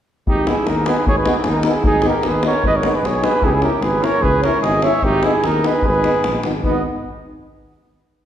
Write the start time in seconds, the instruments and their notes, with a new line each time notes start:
0.27 tuba G#1, trumpet D#4, flugelhorn G4, davul low
0.47 trombone B3, euphonium D#4, trumpet E4, flugelhorn G#4, davul high
0.67 tuba D#2, trumpet D#4, flugelhorn A#4, davul high
0.86 trombone B3, euphonium D#4, trumpet G#4, flugelhorn B4, davul high
0.96 davul high
1.05 tuba G#1, trumpet G#4, flugelhorn C#5, davul low
1.18 trumpet G#4, flugelhorn B4
1.25 trombone B3, euphonium D#4, davul high
1.38 trumpet E4, flugelhorn G#4
1.44 tuba D#2, trumpet D#4, davul high
1.51 flugelhorn A#4
1.63 trombone B3, euphonium D#4, trumpet E4, davul high
1.70 flugelhorn G#4, davul high
1.84 tuba G#1, trumpet D#4, flugelhorn G#4, davul low
2.02 trombone B3, euphonium D#4, trumpet G4, davul high
2.09 flugelhorn A#4
2.23 tuba D#2, trumpet G#4, davul high
2.28 flugelhorn B4
2.43 trombone B3, euphonium D#4, trumpet A#4, flugelhorn C#5, davul high
2.53 davul high
2.63 tuba G#1, trumpet B4, flugelhorn D#5, davul low
2.75 trumpet A#4, flugelhorn C#5, davul high
2.83 trombone B3, euphonium D#4, davul high
2.95 trumpet G#4, flugelhorn B4, davul high
3.01 tuba B1, trumpet G#4, davul high
3.07 flugelhorn C#5
3.15 davul high
3.22 trombone B3, euphonium D#4, trumpet G#4, flugelhorn B4, davul high
3.41 tuba C#2, trumpet E4, flugelhorn G#4, davul low
3.45 trumpet D#4, flugelhorn G4
3.51 trumpet E4, flugelhorn G#4
3.61 trombone C#4, euphonium E4, trumpet G4, flugelhorn A#4, davul high
3.81 tuba G#1, trumpet G#4, flugelhorn B4, davul high
4.00 trombone C#4, euphonium E4, trumpet A#4, davul high
4.04 flugelhorn C#5
4.21 tuba C#2, trumpet G#4, flugelhorn B4, davul low
4.41 trombone C#4, trumpet A#4, flugelhorn C#5, davul high
4.45 euphonium E4
4.61 tuba G#1, trumpet G#4, flugelhorn D#5, davul high
4.82 trombone C#4, euphonium E4, trumpet C#5, flugelhorn E5, davul high
4.94 davul high
5.02 tuba G#1, trumpet D#4, flugelhorn G4, davul low
5.23 trombone B3, euphonium D#4, trumpet E4, flugelhorn G#4, davul high
5.43 tuba D#2, trumpet D#4, flugelhorn A#4, davul high
5.62 trombone B3, euphonium D#4, flugelhorn B4, davul high
5.67 trumpet G#4
5.74 davul high
5.82 tuba G#1, trumpet G#4, davul low
5.88 flugelhorn B4
5.94 davul high
6.03 trombone B3, euphonium D#4, davul high
6.14 davul high
6.24 tuba A#1, davul high
6.35 davul high
6.43 tuba G#1, trombone B3, euphonium D#4, davul high
6.63 tuba G#1, trombone B3, trumpet B3, euphonium D#4, flugelhorn D#5, davul low